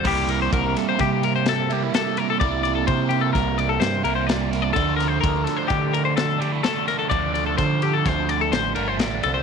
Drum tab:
CC |x---------|----------|----------|----------|
RD |-xxxxxxxxx|xxxxxxxxxx|xxxxxxxxxx|xxxxxxxxxx|
SD |---oo-o-o-|----o-o-oo|-o-o--o-oo|--o-o-o-o-|
BD |o-o-o-----|o-o-o-----|o-o-o-----|o-o-o-----|